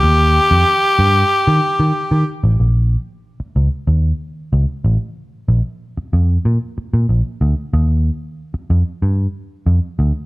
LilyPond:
<<
  \new Staff \with { instrumentName = "Tenor saxophone" } { \time 4/4 \key bes \dorian \tempo 4 = 93 g'2.~ g'8 r8 | r1 | r1 | r1 | }
  \new Staff \with { instrumentName = "Picked electric bass" } { \clef bass \time 4/4 \key bes \dorian ees,8. f,16 r8 g,8 r16 ees16 r16 ees16 r16 ees16 r16 a,,16 | bes,,8. r8. des,16 r16 ees,8 r8 des,16 r16 a,,16 r16 | r8 bes,,16 r8. f,8 bes,16 r8 bes,16 bes,,16 r16 d,16 r16 | ees,8. r8. f,16 r16 g,8 r8 f,16 r16 d,16 r16 | }
>>